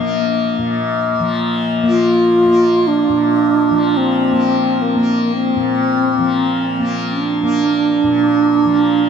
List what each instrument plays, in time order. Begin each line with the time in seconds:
Already playing: tanpura A#2 F3, singing bowl A#3
0.00 tanpura A#3
0.58 tanpura A#2
1.19 tanpura F3
1.83 tanpura A#3
1.88 bass flute F4
2.46 tanpura A#3
2.87 bass flute D4
3.09 tanpura A#2
3.70 tanpura F3
3.97 bass flute C4
4.32 tanpura A#3
4.82 bass flute A#3
4.96 tanpura A#3
5.34 bass flute C4
5.56 tanpura A#2
6.18 tanpura F3
6.80 tanpura A#3
7.12 bass flute D4
7.43 tanpura A#3
8.04 tanpura A#2
8.65 tanpura F3